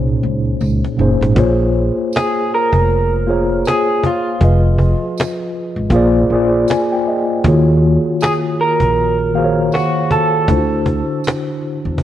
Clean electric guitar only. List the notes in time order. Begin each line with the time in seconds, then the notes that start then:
Already playing: A#4
2.16 G#4
2.54 A#4
3.67 G#4
4.06 F4
8.23 G#4
8.61 A#4
9.74 F#4
10.12 A4